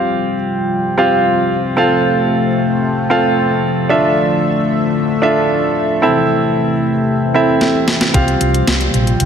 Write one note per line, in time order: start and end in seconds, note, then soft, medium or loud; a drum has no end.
0.00 3.85 C3 medium
0.00 5.98 F3 medium
0.00 1.75 G3 medium
0.00 0.34 C4 medium
0.00 0.35 F4 medium
0.00 3.86 F4 medium
0.00 0.35 G4 medium
0.00 0.35 F5 medium
0.98 1.50 C4 medium
0.98 1.50 F4 medium
0.98 1.50 G4 medium
0.98 1.50 F5 medium
1.77 3.87 A3 medium
1.77 2.47 C4 medium
1.77 2.47 F4 medium
1.77 2.47 A4 medium
1.77 2.47 F5 medium
3.10 3.62 C4 medium
3.10 3.62 F4 medium
3.10 3.63 A4 medium
3.10 3.63 F5 medium
3.89 6.00 D3 medium
3.89 8.10 A3 medium
3.89 4.59 D4 medium
3.89 4.59 F4 medium
3.89 4.60 A4 medium
3.89 8.10 E5 medium
3.89 4.60 E5 medium
5.22 5.74 D4 medium
5.22 5.75 F4 medium
5.22 5.75 A4 medium
5.22 5.75 E5 medium
6.02 9.25 C3 medium
6.02 8.13 E3 medium
6.02 6.72 C4 medium
6.02 6.72 E4 medium
6.02 6.72 A4 medium
6.02 6.72 E5 medium
7.34 7.87 C4 medium
7.34 7.87 E4 medium
7.34 7.87 A4 medium
7.34 7.87 E5 medium
7.61 snare medium
7.88 snare medium
8.01 snare medium
8.14 8.34 C2 medium
8.14 8.84 C4 medium
8.14 8.84 F4 medium
8.14 8.84 G4 medium
8.14 8.84 F5 medium
8.14 kick loud
8.14 closed hi-hat medium
8.28 closed hi-hat soft
8.41 8.60 C2 medium
8.41 closed hi-hat medium
8.54 closed hi-hat medium
8.68 8.87 C2 medium
8.68 snare medium
8.68 closed hi-hat medium
8.81 closed hi-hat soft
8.94 9.13 A#1 medium
8.94 closed hi-hat medium
9.07 closed hi-hat soft
9.20 9.25 C2 medium
9.20 closed hi-hat medium